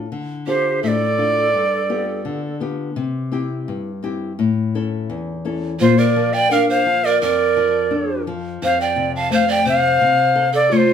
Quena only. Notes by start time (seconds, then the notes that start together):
0.48 C5
0.83 E5
0.88 D5
5.81 C5
5.98 D5
6.34 G5
6.52 F5
6.70 F5
7.05 D5
7.23 D5
8.64 F5
8.81 G5
9.16 A5
9.34 F5
9.51 G5
9.69 F5
10.55 D5
10.72 C#5
10.77 C5